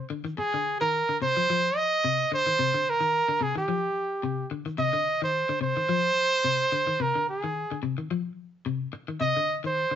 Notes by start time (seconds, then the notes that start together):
0.10 D3
0.25 D#3
0.38 G#4, muted clean electric guitar stroke
0.54 D3
0.81 D#3 A#4
1.09 D3
1.22 C3 C5
1.37 F3
1.50 F3
1.76 D#5
2.04 C3
2.32 D3 C5
2.47 D#3
2.59 C3
2.74 D3
2.90 A#4
3.01 D#3
3.29 D3
3.41 C3 G#4
3.56 D#3 G4
3.68 F3
4.23 C3
4.51 D3
4.66 D#3
4.78 C3 D#5
4.93 D3
5.22 D#3 C5
5.49 D3
5.61 C3 C5
5.77 D#3
5.89 F3
6.44 C3
6.72 D3
6.87 D#3
7.00 C3 A#4
7.15 D3
7.29 G#4
7.44 D#3
7.71 D3
7.83 C3
7.98 D#3
8.11 F3
8.66 C3
8.93 muted clean electric guitar stroke
9.08 D#3
9.21 C3 D#5
9.37 D3
9.64 D#3 C5
9.91 D3